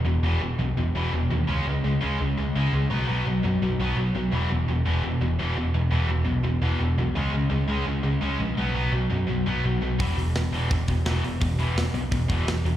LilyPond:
<<
  \new Staff \with { instrumentName = "Distorted electric guitar" } { \clef bass \time 4/4 \key e \major \tempo 4 = 169 <e, b,>8 <e, b, e>8 <e, b,>8 <e, b,>8 <e, b,>8 <e, b, e>8 <e, b,>8 <e, b,>8 | <cis gis cis'>8 <cis gis>8 <cis gis>8 <cis gis cis'>8 <cis gis>8 <cis gis>8 <cis gis cis'>8 <cis gis>8 | <b, fis b>8 <b, fis b>8 <b, fis>8 <b, fis>8 <b, fis>8 <b, fis b>8 <b, fis>8 <b, fis>8 | <e, b, e>8 <e, b,>8 <e, b,>8 <e, b, e>8 <e, b,>8 <e, b,>8 <e, b, e>8 <e, b,>8 |
<e, b,>8 <e, b, e>8 <e, b,>8 <e, b,>8 <e, b,>8 <e, b, e>8 <e, b,>8 <e, b,>8 | <cis gis cis'>8 <cis gis>8 <cis gis>8 <cis gis cis'>8 <cis gis>8 <cis gis>8 <cis gis cis'>8 <cis gis>8 | <b, fis b>8 <b, fis b>8 <b, fis>8 <b, fis>8 <b, fis>8 <b, fis b>8 <b, fis>8 <b, fis>8 | <e, b, e>8 <e, b,>8 <e, b,>8 <e, b, e>8 <e, b,>8 <e, b,>8 <e, b, e>8 <e, b,>8 |
<e, b,>8 <e, b, e>8 <e, b,>8 <e, b,>8 <e, b,>8 <e, b, e>8 <e, b,>8 <e, b,>8 | }
  \new Staff \with { instrumentName = "Picked electric bass" } { \clef bass \time 4/4 \key e \major e,,8 e,,8 e,,8 b,,8 e,,8 e,,8 e,,8 dis,8 | cis,8 cis,8 cis,8 cis,8 cis,8 cis,8 cis,8 cis,8 | b,,8 b,,8 b,,8 fis,8 b,,8 b,,8 b,,8 b,,8 | e,,8 e,,8 e,,8 e,,8 e,,8 e,,8 e,,8 e,,8 |
e,,8 e,,8 e,,8 b,,8 e,,8 e,,8 e,,8 b,,8 | cis,8 cis,8 cis,8 cis,8 cis,8 cis,8 cis,8 ais,,8 | b,,8 b,,8 b,,8 fis,8 b,,8 b,,8 b,,8 b,,8 | e,,8 e,,8 e,,8 e,,8 e,,8 e,,8 e,,8 e,,8 |
e,,8 e,,8 e,,8 b,,8 e,,8 e,,8 e,,8 e,,8 | }
  \new DrumStaff \with { instrumentName = "Drums" } \drummode { \time 4/4 r4 r4 r4 r4 | r4 r4 r4 r4 | r4 r4 r4 r4 | r4 r4 r4 r4 |
r4 r4 r4 r4 | r4 r4 r4 r4 | r4 r4 r4 r4 | <hho bd>8 hho8 <hho sn>8 hho8 <hho bd>8 <hho bd>8 <hho sn>8 hho8 |
<hho bd>8 hho8 <hho sn>8 hho8 <hho bd>8 <hho bd>8 <hho sn>8 hho8 | }
>>